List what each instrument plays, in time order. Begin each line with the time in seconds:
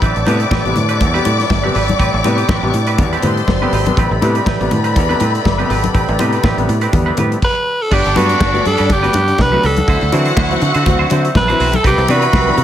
Already playing: accordion B2 C3 G3 A3
0.01 fingered electric bass A1, grand piano A2, clean electric guitar C4 G4 B4, accordion D4, string section D5 D6, kick, closed hi-hat
0.15 fingered electric bass A1, muted clean electric guitar stroke, closed hi-hat
0.26 fingered electric bass A2, grand piano C3 G3 B3, clean electric guitar C4 G4 B4, closed hi-hat, muted conga
0.40 grand piano G3 B3, clean electric guitar C4 G4 B4, closed hi-hat
0.51 fingered electric bass A1, grand piano A2, clean electric guitar C4 G4 B4, kick, snare, high conga
0.64 fingered electric bass A1, grand piano C3 G3 B3, muted clean electric guitar stroke, closed hi-hat
0.75 fingered electric bass A2, grand piano G3 B3, muted clean electric guitar stroke, closed hi-hat, muted conga, low conga
0.89 clean electric guitar C4 G4 B4, closed hi-hat
1.00 fingered electric bass E2, muted clean electric guitar stroke, kick, closed hi-hat, muted conga
1.14 grand piano C3 G3 B3, clean electric guitar C4 G4 B4, closed hi-hat
1.25 fingered electric bass A2, clean electric guitar C4 G4 B4, closed hi-hat, muted conga
1.39 grand piano A2, muted clean electric guitar stroke, snare, closed hi-hat
1.50 fingered electric bass G1, grand piano A2, muted clean electric guitar stroke, kick, snare, high conga
1.63 grand piano C3 G3 B3, clean electric guitar C4 G4 B4
1.74 fingered electric bass G#1, grand piano G3 B3, clean electric guitar C4 G4 B4, open hi-hat
1.88 muted clean electric guitar stroke, closed hi-hat, high conga
1.99 fingered electric bass A1, grand piano A2, clean electric guitar C4 G4 B4, kick, closed hi-hat
2.13 fingered electric bass A1, muted clean electric guitar stroke
2.23 fingered electric bass A2, grand piano C3 G3 B3, clean electric guitar C4 G4 B4, closed hi-hat, muted conga
2.37 grand piano G3 B3, clean electric guitar C4 G4 B4, closed hi-hat
2.48 fingered electric bass A1, grand piano A2, clean electric guitar C4 G4 B4, kick, snare, high conga
2.63 fingered electric bass A1, grand piano C3 G3 B3, muted clean electric guitar stroke
2.74 fingered electric bass A2, grand piano G3 B3, muted clean electric guitar stroke, closed hi-hat, muted conga
2.87 clean electric guitar C4 G4 B4, closed hi-hat
2.98 fingered electric bass E2, grand piano G3 B3, kick, closed hi-hat, muted conga, low conga
3.13 grand piano A2, clean electric guitar C4 G4 B4, closed hi-hat
3.22 fingered electric bass A2, grand piano G3 B3, clean electric guitar C4 G4 B4, string section C5 C6, closed hi-hat, muted conga, low conga
3.37 muted clean electric guitar stroke, closed hi-hat
3.48 fingered electric bass G1, muted clean electric guitar stroke, kick, snare, high conga
3.61 grand piano C3 G3 B3, clean electric guitar C4 G4 B4
3.72 fingered electric bass G#1, grand piano A2, clean electric guitar C4 G4 B4, open hi-hat
3.86 grand piano C3 G3 B3, muted clean electric guitar stroke, closed hi-hat, high conga
3.97 fingered electric bass A1, grand piano A2, clean electric guitar C4 G4 B4, string section B4 B5, kick, closed hi-hat
4.11 fingered electric bass A1, muted clean electric guitar stroke
4.21 fingered electric bass A2, grand piano C3 G3 B3, clean electric guitar C4 G4 B4, closed hi-hat, muted conga
4.35 grand piano G3 B3, clean electric guitar C4 G4 B4, closed hi-hat
4.46 fingered electric bass A1, grand piano A2, clean electric guitar C4 G4 B4, kick, snare, high conga
4.60 fingered electric bass A1, grand piano C3 G3 B3, muted clean electric guitar stroke, closed hi-hat
4.71 fingered electric bass A2, grand piano G3 B3, muted clean electric guitar stroke, closed hi-hat, muted conga, low conga
4.84 clean electric guitar C4 G4 B4, closed hi-hat
4.95 fingered electric bass E2, muted clean electric guitar stroke, kick, closed hi-hat, muted conga
5.09 grand piano C3 G3 B3, clean electric guitar C4 G4 B4, closed hi-hat
5.20 fingered electric bass A2, clean electric guitar C4 G4 B4, closed hi-hat, muted conga
5.34 grand piano A2, muted clean electric guitar stroke, closed hi-hat
5.45 fingered electric bass G1, grand piano A2, muted clean electric guitar stroke, kick, snare, high conga
5.58 grand piano C3 G3 B3, clean electric guitar C4 G4 B4, closed hi-hat
5.70 fingered electric bass G#1, grand piano G3 B3, clean electric guitar C4 G4 B4, open hi-hat
5.84 muted clean electric guitar stroke, closed hi-hat, high conga
5.94 fingered electric bass A1, grand piano A2, clean electric guitar C4 G4 B4, kick, closed hi-hat
6.08 fingered electric bass A1, muted clean electric guitar stroke, closed hi-hat
6.19 fingered electric bass A2, grand piano C3 G3 B3, clean electric guitar C4 G4 B4, closed hi-hat, muted conga
6.33 grand piano G3 B3, clean electric guitar C4 G4 B4, closed hi-hat
6.43 fingered electric bass A1, grand piano A2, clean electric guitar C4 G4 B4, kick, snare, high conga
6.57 fingered electric bass A1, grand piano C3 G3 B3, muted clean electric guitar stroke, closed hi-hat
6.68 fingered electric bass A2, grand piano G3 B3, muted clean electric guitar stroke, closed hi-hat
6.81 clean electric guitar C4 G4 B4, closed hi-hat
6.93 fingered electric bass E2, grand piano G3 B3, muted clean electric guitar stroke, kick, closed hi-hat, muted conga, low conga
7.06 grand piano A2, clean electric guitar C4 G4 B4
7.17 fingered electric bass A2, grand piano G3 B3, clean electric guitar C4 G4 B4, closed hi-hat, muted conga, low conga
7.31 muted clean electric guitar stroke, closed hi-hat
7.42 alto saxophone B4, kick, crash
7.82 alto saxophone A4
7.91 fingered electric bass G1, grand piano G2 D3, accordion D3 G3 B3 F#5, string section D4 D5, clean electric guitar D4 F#4 B4, alto saxophone G4, kick, crash
8.05 fingered electric bass G1, muted clean electric guitar stroke, closed hi-hat
8.16 fingered electric bass G2, grand piano F#3 A3 B3, clean electric guitar D4 F#4 B4, alto saxophone F#4, closed hi-hat, muted conga
8.29 grand piano A3 B3, clean electric guitar D4 F#4 B4, closed hi-hat
8.40 fingered electric bass G1, grand piano G2 D3, clean electric guitar D4 F#4 B4, kick, snare, high conga
8.54 grand piano F#3 A3 B3, muted clean electric guitar stroke, closed hi-hat
8.65 fingered electric bass G2, grand piano A3 B3, alto saxophone A4, muted clean electric guitar stroke, closed hi-hat
8.78 fingered electric bass G2, clean electric guitar D4 F#4 B4, closed hi-hat
8.89 fingered electric bass G1, alto saxophone G4, muted clean electric guitar stroke, kick, closed hi-hat, muted conga
9.03 grand piano F#3 A3 B3, clean electric guitar D4 F#4 B4, closed hi-hat
9.13 fingered electric bass G2, clean electric guitar D4 F#4 B4, closed hi-hat, muted conga
9.27 grand piano G2 D3, muted clean electric guitar stroke, closed hi-hat
9.38 fingered electric bass C2, grand piano G2 D3, alto saxophone B4, muted clean electric guitar stroke, kick, snare, high conga
9.52 grand piano F#3 A3 B3, clean electric guitar D4 F#4 B4
9.63 fingered electric bass C#2, grand piano A3 B3, clean electric guitar D4 F#4 B4, alto saxophone A4, open hi-hat
9.77 closed hi-hat, high conga
9.88 fingered electric bass D2, grand piano D3, accordion A3 C4 E4, clean electric guitar E4 F#4 C5, string section F#4 F#5, kick, closed hi-hat
10.01 fingered electric bass D2, muted clean electric guitar stroke, closed hi-hat
10.12 fingered electric bass D3, grand piano E3 F#3 C4, clean electric guitar E4 F#4 C5, closed hi-hat, muted conga
10.25 grand piano F#3 C4, clean electric guitar E4 F#4 C5, closed hi-hat
10.36 fingered electric bass D2, grand piano D3, clean electric guitar E4 F#4 C5, kick, snare, high conga
10.50 grand piano E3 F#3 C4, muted clean electric guitar stroke, closed hi-hat
10.61 fingered electric bass D3, grand piano F#3 C4, muted clean electric guitar stroke, closed hi-hat, muted conga
10.74 fingered electric bass D3, clean electric guitar E4 F#4 C5, closed hi-hat
10.86 fingered electric bass D2, grand piano F#3 C4, muted clean electric guitar stroke, kick, closed hi-hat, muted conga, low conga
10.99 grand piano D3, clean electric guitar E4 F#4 C5
11.10 fingered electric bass D3, grand piano F#3 C4, clean electric guitar E4 F#4 C5, closed hi-hat, muted conga
11.25 muted clean electric guitar stroke, closed hi-hat
11.35 fingered electric bass A#1, grand piano D3, string section C4 C5, alto saxophone B4, muted clean electric guitar stroke, kick, snare, high conga
11.43 string section D4 D5
11.48 grand piano E3 F#3 C4, clean electric guitar E4 F#4 C5, string section E4 E5, closed hi-hat
11.59 fingered electric bass B1, grand piano F#3 C4, clean electric guitar E4 F#4 C5, string section F#4 F#5, open hi-hat
11.67 string section G4 G5
11.73 alto saxophone A4, string section A4 A5, muted clean electric guitar stroke, closed hi-hat, high conga
11.84 fingered electric bass C2, accordion C3 E3 G3 B3, grand piano C3, clean electric guitar C4 E4 B4, alto saxophone G4, string section B4 B5, kick, closed hi-hat
11.98 fingered electric bass C2, muted clean electric guitar stroke, closed hi-hat
12.08 fingered electric bass C3, grand piano E3 B3 D4, clean electric guitar C4 E4 B4, alto saxophone F#4, closed hi-hat, muted conga
12.22 grand piano B3 D4, clean electric guitar C4 E4 B4, closed hi-hat
12.33 fingered electric bass C2, grand piano C3, clean electric guitar C4 E4 B4, kick, snare, high conga
12.47 grand piano E3 B3 D4, muted clean electric guitar stroke
12.57 fingered electric bass C3, grand piano B3 D4, muted clean electric guitar stroke, closed hi-hat, muted conga